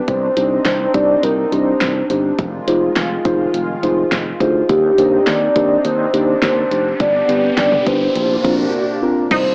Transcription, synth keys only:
0.37 D4 D#4 G4 C5
0.94 D4 D#4 G4 C5
1.52 D4 D#4 G4 C5
2.10 D4 D#4 G4 C5
2.67 D#4 F4 G#4 C5
3.25 D#4 F4 G#4 C5
3.83 D#4 F4 G#4 C5
4.41 D#4 F4 G#4 C5
4.98 D4 D#4 G4 C5
5.56 D4 D#4 G4 C5
6.14 D4 D#4 G4 C5
6.71 D4 D#4 G4 C5
7.29 B3 D4 G4 B4
7.87 B3 D4 G4 B4
8.45 C4 D4 F4 A#4
9.02 C4 D4 F4 A#4

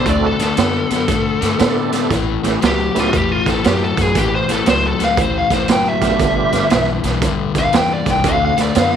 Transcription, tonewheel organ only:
Already playing: A4
0.05 A3 C4 D4 E4 F#4
1.58 A3 C4 D4 E4 A4
2.43 A3 B3 C#4 E4 G4
2.94 A3 B3 C#4 E4 G4
6.00 A3 B3 D4 F4 G4
8.24 A3 C4 D4 E4 F#4

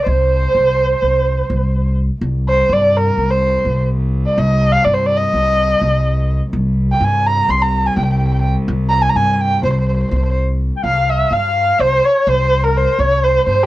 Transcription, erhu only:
0.07 C5
2.49 C5
2.73 D5
2.97 A#4
3.30 C5
4.26 D5
4.39 D#5
4.72 F5
4.85 D5
4.94 C5
5.06 D5
5.17 D#5
6.91 G5
7.04 G#5
7.26 A#5
7.50 C6
7.62 A#5
7.86 G#5
7.97 G5
8.04 G5
8.12 G5
8.18 G5
8.27 G5
8.33 G5
8.40 G5
8.90 A#5
9.02 G#5
9.09 A#5
9.16 G#5
9.33 G#5
9.41 G5
9.64 C5
9.72 C5
9.80 C5
9.88 C5
9.95 C5
10.02 C5
10.10 C5
10.17 C5
10.24 C5
10.31 C5
10.85 F5
11.10 E5
11.33 F5
11.81 C5
12.06 C#5
12.29 C5
12.64 A#4
12.77 C5
13.00 C#5
13.24 C5
13.46 C5

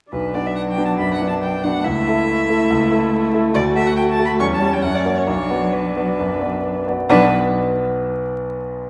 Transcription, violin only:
0.12 B4
0.34 D5
0.46 E5
0.56 F#5
0.71 G5
0.86 A5
0.99 B5
1.14 F#5
1.28 A5
1.42 G5
1.63 F#5
1.84 E5
3.54 D5
3.76 E5
3.87 F#5
3.97 G5
4.12 A5
4.26 B5
4.40 C#6
4.55 A5
4.73 G5
4.82 F#5
4.95 D5
5.17 C#5
5.27 C#5
5.73 B4
7.09 B4

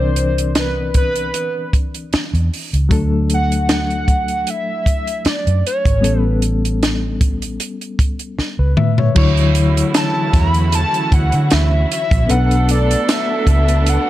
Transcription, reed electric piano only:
Already playing: E3 C4 D4 A#4 D5
2.89 F#3 A3 D4 A4
6.01 G3 B3 C#4 A4
8.59 B4
8.77 E5
8.99 C#5
9.15 D3 F#3 E4 C#5
12.26 B3 C#4 A4 B4
12.34 D4

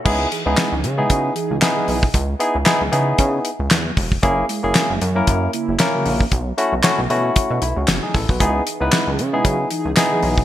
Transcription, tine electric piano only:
0.05 B3 D#4 E4 G#4
0.46 B3 D#4 E4 G#4
0.98 B3 D#4 E4 G#4
1.61 B3 D#4 E4 G#4
2.40 B3 D#4 E4 G#4
2.65 B3 D#4 E4 G#4
2.91 B3 D#4 E4 G#4
4.23 A#3 C#4 E4 G#4
4.63 A#3 C#4 E4 G#4
5.15 A#3 C#4 E4 A#4
5.79 A#3 C#4 E4 A#4
6.58 A3 C#4 E4 F#4
6.84 A3 C#4 E4 F#4
7.10 A3 C#4 E4 F#4
7.62 B3 E4
7.77 C#4 F#4
8.03 D#4 G#4
8.14 E4 A4
8.29 F#4 B4
8.40 B3 D#4 E4 G#4
8.80 B3 D#4 E4 B4
9.33 B3 D#4 E4 G#4
9.96 B3 D#4 E4 G#4

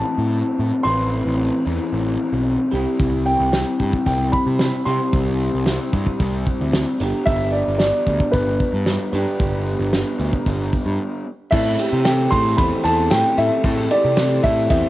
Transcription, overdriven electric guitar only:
Already playing: A2 E3 A3 C4 E4
0.85 A2 E3 A3 C4 E4
1.65 A2 E3 A3 C4 E4
2.72 C3 G3 C4 E4
3.51 C3 G3 C4 E4
4.86 C3 G3 C4 E4
5.65 C3 G3 C4 E4
6.99 G2 D3 G3 B3 D4
7.80 G2 D3 G3 B3 D4
9.13 G2 D3 G3 B3 D4
9.93 G2 D3 G3 B3 D4
11.52 A2 E3 A3 C4 E4
11.78 A3 C4 E4
12.04 E3 A3 C4 E4
12.31 A3 C4 E4
12.83 A3 C4 E4
13.10 A2 E3 A3 C4 E4
13.63 A2 E3 A3 C4 E4
13.91 A3 C4 E4
14.18 E3 A3 C4 E4
14.44 A3 C4 E4

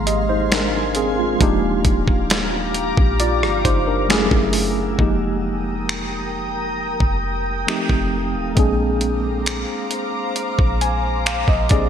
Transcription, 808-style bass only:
Already playing: G#1
1.41 D#1
1.85 D#1
2.98 A#1
3.42 G1
3.65 F#1
4.32 F#1
4.99 F1
7.01 F1
7.90 F1
8.35 D#1
8.57 A#1
10.59 A#1
11.48 A#1
11.71 A#1

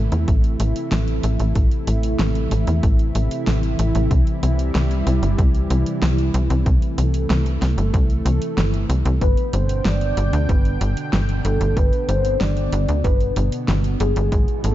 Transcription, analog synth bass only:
Already playing: A1
0.12 E2
0.28 A1
0.60 A1
0.92 A1
1.24 A1
1.40 A1
1.56 A1
1.88 A1
2.20 A1
2.52 A1
2.67 E2
2.83 A1
3.15 A1
3.47 A1
3.79 A1
3.95 A1
4.11 C2
4.43 C2
4.75 C2
5.07 C2
5.23 G1
5.38 C2
5.70 C2
6.02 C2
6.34 C2
6.50 C2
6.66 C2
6.98 C2
7.30 C2
7.62 C2
7.78 G1
7.94 C2
8.25 C2
8.58 G1
8.89 C2
9.05 C2
9.21 G1
9.53 G1
9.85 G1
10.17 G1
10.33 D2
10.49 G1
10.81 G1
11.13 G1
11.45 G1
11.61 G1
11.77 G1
12.09 G1
12.41 G1
12.73 G1
12.89 D2
13.04 G1
13.37 G1
13.68 G1
14.00 G1
14.17 G1
14.32 G#1
14.64 G#1

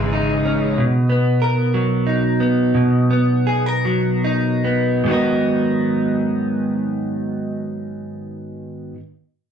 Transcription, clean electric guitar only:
Already playing: C#3 G#3 C#4 D#4 G#4
0.13 D#4
0.45 C#4
0.78 B2
1.10 B3
1.42 A#4
1.74 F#3
2.07 D#4
2.40 B3
2.75 B2
3.11 B3
3.47 G#4
3.66 A#4
3.85 F#3
4.24 D#4
4.64 B3
5.04 G#2 D#3 F#3
5.10 B3 D#4 A#4

